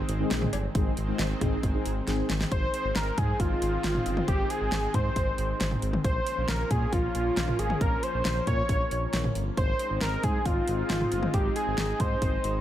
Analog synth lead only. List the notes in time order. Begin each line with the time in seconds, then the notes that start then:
2.52 C5
2.96 A#4
3.18 G#4
3.40 F4
4.28 G4
4.50 G#4
4.95 C5
6.05 C5
6.49 A#4
6.71 G#4
6.93 F4
7.59 G#4
7.81 A#4
8.03 C5
8.47 C#5
9.58 C5
10.02 A#4
10.24 G#4
10.46 F4
11.34 G4
11.56 G#4
12.00 C5